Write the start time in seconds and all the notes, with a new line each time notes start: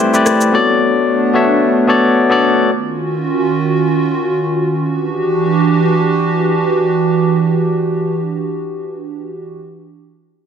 Already playing: G3 A3 C4 E4 G4 B4 C5 D5
0.13 A3 E4 G4 B4 D5, shaker
0.26 cross-stick, shaker
0.41 shaker
0.52 A3 B3 D4 F#4 A4 C#5 D5
1.33 B3 F#4 A4 C#5 E5
1.87 B3 F#4 A4 C#5 D5
2.29 B3 F#4 A4 C#5 D5
2.69 D#3 C#4 F4 F#4
4.86 E3 D4 F#4 G4